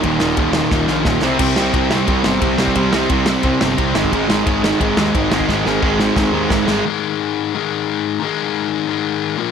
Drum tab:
CC |----------------|x---------------|----------------|----------------|
RD |x---x-----------|----x---x---x---|x---x---x---x---|x---x---x---x---|
SD |--o---o-o-o-o-o-|--o---o---o---o-|--o---o---o---o-|--o---o---o---o-|
BD |o---o---o---o---|o---o---o---o--o|o---o---o---o--o|o---o---o---o--o|

CC |----------------|----------------|----------------|
RD |----------------|----------------|----------------|
SD |o-o---o-o---o-o-|----------------|----------------|
BD |o---o---o---o---|----------------|----------------|